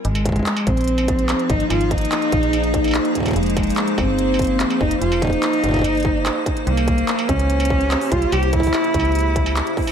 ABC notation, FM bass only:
X:1
M:4/4
L:1/8
Q:1/4=145
K:Ab
V:1 name="FM bass" clef=bass
A,,,2 z B,,,3 z A,,, | A,,,2 z B,,,3 z2 | F,,,2 z G,,,3 z F,,, | F,,,2 z G,,,3 z2 |
C,,2 z D,,3 z C,, | C,,2 z D,,3 z2 |]